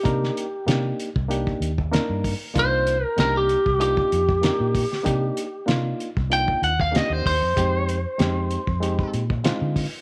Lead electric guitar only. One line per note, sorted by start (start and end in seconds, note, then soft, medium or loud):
0.00 0.64 G4 medium
2.59 3.04 C5 medium
3.04 3.18 A#4 medium
3.20 3.35 A#4 medium
3.37 3.80 G4 medium
3.81 5.65 G4 medium
6.33 6.62 G5 medium
6.64 6.79 F#5 medium
6.81 6.96 F5 medium
6.96 7.13 D#5 medium
7.13 7.25 C5 medium
7.27 9.10 C5 medium